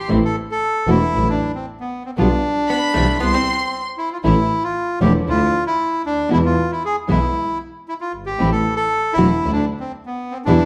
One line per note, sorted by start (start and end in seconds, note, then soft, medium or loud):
0.09 0.31 A1 medium
0.09 0.18 E3 medium
0.09 0.31 A3 medium
0.09 0.18 A3 medium
0.09 0.31 C4 medium
0.09 0.18 C4 medium
0.09 0.31 E4 medium
0.09 0.18 E4 medium
0.25 0.36 A4 medium
0.51 0.90 A4 medium
0.87 1.09 E1 medium
0.87 0.96 E3 medium
0.87 1.09 A3 medium
0.87 0.96 A3 medium
0.87 1.09 C4 medium
0.87 0.97 D4 medium
0.87 1.09 E4 medium
0.87 1.28 E4 medium
0.87 0.97 F#4 medium
1.13 1.35 A1 medium
1.13 1.35 F#3 medium
1.13 1.35 D4 medium
1.13 1.35 E4 medium
1.29 1.52 D4 medium
1.55 1.66 C4 medium
1.80 2.03 B3 medium
2.05 2.11 C4 medium
2.17 2.39 B1 medium
2.17 2.26 B2 medium
2.17 2.26 D3 medium
2.17 2.39 G3 medium
2.17 2.26 G3 medium
2.17 2.39 B3 medium
2.17 2.26 B3 medium
2.17 3.17 D4 medium
2.17 2.39 F4 medium
2.17 2.27 F4 medium
2.68 2.77 B3 medium
2.68 3.16 B5 medium
2.94 3.17 B1 medium
2.94 3.04 C3 medium
2.94 3.04 E3 medium
2.94 3.16 G3 medium
2.94 3.04 G3 medium
2.94 3.18 A3 medium
2.94 3.16 B3 medium
2.94 3.04 C4 medium
2.94 3.04 E4 medium
2.94 3.16 F4 medium
3.20 3.42 C2 medium
3.20 3.42 G3 medium
3.20 3.34 B3 medium
3.20 3.42 C4 medium
3.20 3.42 E4 medium
3.20 3.81 C6 loud
3.34 3.82 C4 medium
3.98 4.10 E4 medium
4.12 4.18 F4 medium
4.23 4.46 A1 medium
4.23 4.33 E3 medium
4.23 4.45 A3 medium
4.23 4.33 A3 medium
4.23 4.45 C#4 medium
4.23 4.33 C#4 medium
4.23 4.63 E4 medium
4.23 4.45 E4 medium
4.23 4.33 E4 medium
4.64 4.99 F4 medium
5.01 5.23 E1 medium
5.01 5.10 D3 medium
5.01 5.10 F3 medium
5.01 5.23 A3 medium
5.01 5.10 A3 medium
5.01 5.23 C#4 medium
5.01 5.10 D4 medium
5.01 5.23 E4 medium
5.01 5.10 E4 medium
5.01 5.13 G4 medium
5.26 5.49 D2 medium
5.26 5.48 F3 medium
5.26 5.48 D4 medium
5.26 5.49 E4 medium
5.26 5.64 F4 loud
5.66 6.02 E4 medium
6.05 6.31 D2 soft
6.05 6.30 D4 medium
6.29 6.53 E2 medium
6.29 6.39 B2 medium
6.29 6.39 E3 medium
6.29 6.39 G#3 medium
6.29 6.52 G#3 medium
6.29 6.39 B3 medium
6.29 6.52 B3 medium
6.29 6.52 E4 medium
6.29 6.40 E4 medium
6.29 6.38 E4 medium
6.45 6.71 F4 medium
6.72 6.83 E4 medium
6.85 6.96 G#4 medium
7.08 7.31 B1 medium
7.08 7.17 B2 medium
7.08 7.18 E3 medium
7.08 7.31 G#3 medium
7.08 7.18 G#3 medium
7.08 7.18 B3 medium
7.08 7.31 B3 medium
7.08 7.31 E4 medium
7.08 7.18 E4 medium
7.08 7.58 E4 medium
7.88 7.94 E4 medium
8.01 8.12 F4 medium
8.13 8.39 G1 soft
8.26 8.50 G4 medium
8.38 8.61 A1 medium
8.38 8.49 E3 medium
8.38 8.61 A3 medium
8.38 8.49 A3 medium
8.38 8.61 C4 medium
8.38 8.49 C4 medium
8.38 8.61 E4 medium
8.38 8.49 E4 medium
8.51 8.75 A4 medium
8.76 9.14 A4 medium
9.13 9.39 E1 medium
9.13 9.26 D3 medium
9.13 9.39 A3 medium
9.13 9.39 C4 medium
9.13 9.52 E4 medium
9.13 9.39 E4 medium
9.17 9.26 F#3 medium
9.17 9.27 A3 medium
9.17 9.27 E4 medium
9.17 9.27 F#4 medium
9.43 9.65 D2 medium
9.43 9.65 F#3 medium
9.43 9.65 D4 medium
9.43 9.66 E4 medium
9.53 9.65 D4 medium
9.80 9.92 C4 medium
10.06 10.34 B3 medium
10.31 10.38 C4 medium
10.45 10.65 E2 loud
10.45 10.56 B2 medium
10.45 10.57 E3 medium
10.45 10.65 G3 medium
10.45 10.57 G3 medium
10.45 10.65 B3 medium
10.45 10.56 B3 medium
10.45 10.65 D4 medium
10.45 10.65 E4 medium
10.45 10.57 E4 medium